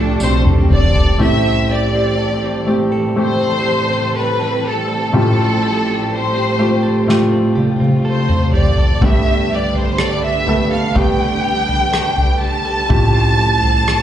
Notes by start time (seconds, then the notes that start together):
Already playing: C2 A2 F3 G3 A3 C4 D4 F4 G4 A4 A5
0.20 B1 G3 C4 C5, tambourine
0.45 A4, mid tom
0.70 E1 C4 D5, floor tom
0.95 A4, floor tom
1.18 A1 A2 E3 G3 A3 C4 G4
1.23 E5
1.44 C4
1.70 G4 D5
1.94 C4
2.18 A4
2.43 C4
2.67 A3 C4 G4
2.92 A4
3.16 A2 A3 C4 G4 A4
3.21 C5
3.41 C4
3.66 G4
3.90 C4
4.15 A4 B4
4.39 C4
4.64 G4 A4
4.88 A4
5.13 A1 A2 F3 A3 F4 G4 A4
5.37 C4
5.62 G4
5.86 C4
6.10 A4 C5
6.34 C4
6.59 A3 F4 G4
6.83 A4
7.07 A2 A3 F4 G4, snare
7.32 C4
7.55 G4, high tom
7.80 C4, high tom
8.05 A4 C5
8.29 C4, mid tom
8.54 G4 D5, floor tom
8.77 A4, floor tom
9.01 G1 G2 D3 G3 A3 B3 G4 E5, kick, floor tom
9.26 D4
9.51 G4 D5
9.74 D4 C5, floor tom
9.98 A4 D5, cross-stick
10.23 D4 E5
10.47 A3 B3 G4 A4, floor tom
10.71 A4 F5
10.95 G3 A3 B3 G4 G5, kick, floor tom
11.19 D4
11.44 G4
11.68 D4, floor tom
11.92 A4, cross-stick
12.16 D4, floor tom
12.41 G4 A5
12.65 A4
12.89 A1 A2 F3 A3 C4 F4 G4, kick, floor tom
13.14 C4
13.39 G4
13.63 C4, floor tom
13.87 A4, cross-stick